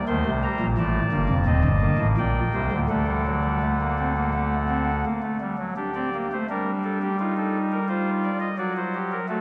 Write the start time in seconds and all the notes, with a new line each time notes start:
0.07 D#2 D#3 A3 C5 C6
0.26 C2 C3
0.43 G3 A#5
0.60 A#1 A#2
0.78 A1 A2 A3 D5 A5
1.12 G1 G2 A#3
1.29 F1 F2
1.46 D#1 D#2 C4 D#5
1.64 G1 G2
1.81 A#3
1.98 A1 A2
2.18 A#1 A#2 D5 G5
2.54 C2 C3 C5
2.71 D2 D3
2.89 D2 D3 A3 A4 F#5
3.07 G3
3.27 F#3
3.44 G3
3.62 A3
3.80 A#3
3.99 C4
4.17 A#3
4.34 A3
4.69 C4
5.05 A#3
5.23 A3
5.41 G3
5.58 F#3
5.76 D4 G4
5.95 C4 D5
6.14 A#3
6.32 A3 C5
6.49 G3 D4 A#4
6.83 A4
7.02 G4
7.20 D#4 F4
7.37 A4
7.72 A#4
7.88 F4 C5
8.23 D5
8.40 D#5
8.58 F#3 F#4 D5
8.76 C5
8.95 G4
9.12 A#4
9.28 A3 F#4 A4